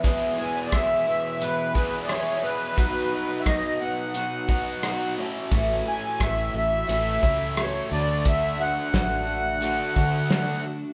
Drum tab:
HH |x-x-x-x-|x-x-x-x-|x-x-x-x-|x-x-x-x-|
SD |--r---r-|--r---r-|--r---r-|--o---o-|
BD |o-o--o--|o-o--o--|o-o--o--|o-o--o--|